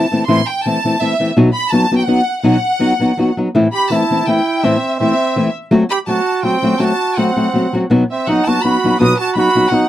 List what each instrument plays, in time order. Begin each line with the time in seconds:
Already playing: violin section A5
0.12 nylon-string guitar E3 A3 C4 E4
0.27 nylon-string guitar A2 E3 A3 C4 E4, violin section C6
0.47 violin section G5
0.63 nylon-string guitar E3 A3 C4, violin section A5
0.67 nylon-string guitar E4
0.85 nylon-string guitar E3 A3 C4 E4
0.99 nylon-string guitar E3 A3 C4 E4, violin section E5
1.20 nylon-string guitar E3 A3 C4 E4
1.37 nylon-string guitar B2 F#3 B3 D#4 F#4
1.53 violin section B5
1.69 nylon-string guitar F#3 B3, violin section A5
1.74 nylon-string guitar D#4 F#4
1.91 nylon-string guitar F#3 B3 D#4 F#4
1.97 violin section G5
2.05 nylon-string guitar F#3 B3 D#4 F#4, violin section F#5
2.42 nylon-string guitar B2 F#3 B3 D#4 F#4, violin section F#5
2.79 nylon-string guitar F#3 B3 D#4 F#4
2.99 nylon-string guitar F#3 B3 D#4 F#4
3.17 nylon-string guitar F#3 B3 D#4 F#4
3.37 nylon-string guitar F#3 B3 D#4 F#4
3.55 nylon-string guitar A2 E3 A3 C4 E4
3.74 trumpet G4, violin section B5
3.90 nylon-string guitar E3 A3 C4 E4, trumpet E4, violin section A5
4.10 nylon-string guitar E3 A3 C4 E4
4.27 nylon-string guitar E3 A3 C4 E4, trumpet E4, violin section G5
4.63 nylon-string guitar A2 E3 A3 C4 E4, trumpet C4, violin section E5
4.99 nylon-string guitar E3 A3 C4 E4, trumpet C4, violin section E5
5.36 nylon-string guitar E3 A3 C4 E4
5.71 nylon-string guitar F#3 A3 C4 F#4
5.91 trumpet G4, violin section B5
6.07 nylon-string guitar F#3 A3 C4 F#4, trumpet F#4, violin section A5
6.43 nylon-string guitar F#3 A3 C4 F#4, trumpet C4, violin section G5
6.62 nylon-string guitar F#3 A3 C4 F#4
6.79 nylon-string guitar F#3 A3 C4 F#4, trumpet F#4, violin section A5
7.17 nylon-string guitar F#3 A3 C4 F#4, trumpet C4, violin section F#5
7.36 nylon-string guitar F#3 A3 C4 F#4
7.54 nylon-string guitar F#3 A3 C4 F#4
7.73 nylon-string guitar F#3 A3 C4 F#4
7.90 nylon-string guitar B2 F#3 B3 D#4 F#4
8.12 trumpet C4, violin section E5
8.27 nylon-string guitar F#3 B3 D#4 F#4, trumpet D#4, violin section F#5
8.46 nylon-string guitar F#3 B3 D#4 F#4, trumpet F#4, violin section A5
8.63 nylon-string guitar F#3 B3 D#4 F#4, trumpet F#4, violin section B5
8.84 nylon-string guitar F#3 B3 D#4 F#4
9.00 nylon-string guitar B2 F#3 B3 D#4 F#4, trumpet B4, violin section D#6
9.19 trumpet F#4, violin section A5
9.35 nylon-string guitar F#3 B3 D#4 F#4, trumpet F#4, violin section B5
9.55 nylon-string guitar F#3 B3 D#4 F#4
9.71 nylon-string guitar F#3 B3 D#4 F#4, trumpet D#4, violin section F#5